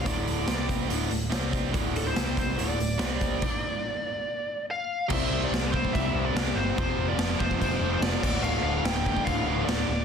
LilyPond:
<<
  \new Staff \with { instrumentName = "Lead electric guitar" } { \time 4/4 \key c \mixolydian \tempo 4 = 143 d''4. r2 r8 | r8 a'16 c''8. c''8 d''2~ | d''2. f''4 | e''8. d''8~ d''32 a'32 c''8 e''8. d''8. c''8 |
c''8. d''8. c''8 \tuplet 3/2 { c''4~ c''16 c''16 } d''4 | f''8 f''8 g''4 f''4 d''4 | }
  \new Staff \with { instrumentName = "Distorted electric guitar" } { \clef bass \time 4/4 \key c \mixolydian <d, a, d>4 <c g c'>4 <d, a, d>8 <d, a,>8 <c g c'>4 | <d, a, d>4 <c g c'>4 <d, a, d>8 <d, a,>8 <c g c'>4 | r1 | <c g c'>4. <c g c'>4. <c g c'>4 |
<f, c f>4. <f, c f>4. <f, c f>8 <d, a, d>8~ | <d, a, d>4 <d, a, d>4. <d, a, d>4 r8 | }
  \new Staff \with { instrumentName = "Overdriven electric guitar" } { \clef bass \time 4/4 \key c \mixolydian <d, a, d>4 <c g c'>4 <d, a, d>8 <d, a,>8 <c g c'>4 | <d, a, d>4 <c g c'>4 <d, a, d>8 <d, a,>8 <c g c'>4 | r1 | <c g c'>2~ <c g c'>8 <c g c'>8 <c g c'>4 |
<f, c f>2~ <f, c f>8 <f, c f>8 <f, c f>8 <d, a, d>8~ | <d, a, d>2 <d, a, d>8 <d, a, d>4 r8 | }
  \new Staff \with { instrumentName = "Picked electric bass" } { \clef bass \time 4/4 \key c \mixolydian d,,4 c,4 d,,8 d,,8 c,4 | d,,4 c,4 d,,8 d,,8 c,4 | r1 | c,8 c,8 c,4 c,8 c,8 c,8 g,,8 |
f,,8 f,,8 f,,8 f,,8 f,,8 f,,8 f,,8 d,,8 | d,,8 d,,8 d,,4 d,,8 d,,8 d,,8 d,,8 | }
  \new DrumStaff \with { instrumentName = "Drums" } \drummode { \time 4/4 <hh bd>8 hh8 <hh sn>8 <hh bd>8 hh8 hh8 <hh sn>8 <hh bd>8 | <hh bd>8 hh8 <hh sn>16 sn16 <hh bd>8 hh8 hh8 <hh sn>8 <hh bd>8 | <cymc bd>4 r4 r4 r4 | <cymc bd>4 <cymc sn>8 bd16 bd16 <cymc bd>4 <cymc sn>4 |
<cymc bd>4 <cymc sn>8 bd16 bd16 <cymc bd>4 <cymc sn>8 <cymc bd>8 | cymc4 <cymc sn>8 bd16 bd16 <cymc bd>4 <cymc sn>4 | }
>>